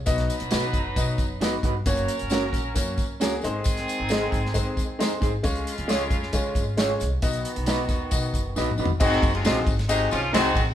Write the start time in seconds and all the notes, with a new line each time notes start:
0.06 B1 F#3 B3 D#4 F#4 B4 D#5, kick, closed hi-hat, tambourine
0.18 snare, closed hi-hat
0.30 closed hi-hat, tambourine
0.40 B1, closed hi-hat
0.51 B2 B3 D#4 F#4 B4 D#5, snare, closed hi-hat, tambourine
0.73 F#1, kick, closed hi-hat, tambourine
0.96 B2 B3 D#4 F#4 D#5, kick, closed hi-hat, tambourine
1.18 F#1, kick, closed hi-hat, tambourine
1.41 B3 D#4 F#4 B4 D#5, snare, closed hi-hat, tambourine
1.63 G1 D#4 F#4 B4, kick, closed hi-hat, tambourine
1.85 F#1 F#3 A#3 C#4 F#4 A#4 C#5, kick, closed hi-hat, tambourine
1.97 closed hi-hat
2.08 closed hi-hat, tambourine
2.19 F#1, closed hi-hat
2.30 A#3 C#4 F#4 A#4 C#5, snare, closed hi-hat, tambourine
2.53 A#1, kick, snare, closed hi-hat, tambourine
2.74 F#2 A#3 C#4 F#4 C#5, kick, closed hi-hat, tambourine
2.97 C#2, kick, closed hi-hat, tambourine
3.20 A#3 C#4 F#4 G#4 A#4, snare, closed hi-hat, tambourine
3.41 G#1 D#3 G#3 C4 D#4 G#4 C5, closed hi-hat, tambourine
3.64 kick, closed hi-hat, tambourine
3.77 snare, closed hi-hat
3.88 closed hi-hat, tambourine
4.00 G#1
4.09 G#3 C4 D#4 G#4 C5 D#5, snare, closed hi-hat, tambourine
4.32 G#1, kick, closed hi-hat, tambourine
4.46 snare
4.54 G#2 G#3 C4 D#4 C5, kick, closed hi-hat, tambourine
4.77 D#2, kick, closed hi-hat, tambourine
4.99 G#3 C4 D#4 G#4 C5, snare, closed hi-hat, tambourine
5.21 G#1 D#4 G#4 C5, kick, closed hi-hat, tambourine
5.43 C#2 C#3 G#3 C#4 F4 C#5, kick, closed hi-hat, tambourine
5.56 closed hi-hat
5.67 closed hi-hat, tambourine
5.78 C#2, closed hi-hat
5.88 G#3 C#4 F4 G#4 C#5, snare, closed hi-hat, tambourine
6.10 F2, kick, closed hi-hat, tambourine
6.23 snare
6.33 C#3 G#3 C#4 F4 C#5, kick, closed hi-hat, tambourine
6.55 G#1, kick, closed hi-hat, tambourine
6.77 G#3 C#4 F4 G#4 C#5, snare, closed hi-hat, tambourine
7.00 C2, closed hi-hat, tambourine
7.21 B1 D#3 B3 D#4 F#4 D#5, kick, closed hi-hat, tambourine
7.33 closed hi-hat
7.45 closed hi-hat, tambourine
7.56 B1, closed hi-hat
7.66 B3 D#4 F#4 B4 D#5, snare, closed hi-hat, tambourine
7.89 D#2, kick, snare, closed hi-hat, tambourine
8.11 B2 B3 D#4 F#4 D#5, kick, closed hi-hat, tambourine
8.34 F#1, kick, closed hi-hat, tambourine
8.56 A#1 B3 D#4 F#4 B4 D#5, snare, tambourine
8.71 mid tom
8.78 B1 D#4 F#4 B4, tambourine
8.86 floor tom
8.90 C#2
9.00 G#1 D#3 C4 D#4 F#4 G#4 D#5, kick, crash, tambourine
9.12 snare
9.22 F#1, kick, ride, tambourine
9.34 C3 G#3 F4, ride
9.45 A#1 C4 D#4 F#4 G#4 C5 D#5, snare, ride, tambourine
9.67 G#1, kick, ride, tambourine
9.79 snare, ride
9.88 C3 G#3 C4 D#4 F#4 G#4 D#5, ride, tambourine
10.10 C2 F3 C#4 F4, ride, tambourine
10.33 C2 D#3 C4 D#4 F#4 G#4 C5 D#5, snare, ride, tambourine
10.55 A1, kick, ride, tambourine